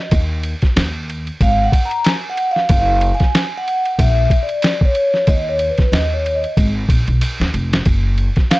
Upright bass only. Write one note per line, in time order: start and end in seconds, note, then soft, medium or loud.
0.12 0.53 D#2 loud
0.76 1.28 D#2 medium
1.41 1.67 G#1 loud
2.70 3.11 F#1 loud
3.99 4.25 A#1 loud
5.28 5.69 D#2 loud
5.92 6.44 D#2 medium
6.57 6.83 G#1 medium
6.89 7.04 A#1 medium
7.08 7.19 B1 medium
7.40 7.51 D#2 medium
7.54 7.80 F1 medium
7.86 8.27 F#1 loud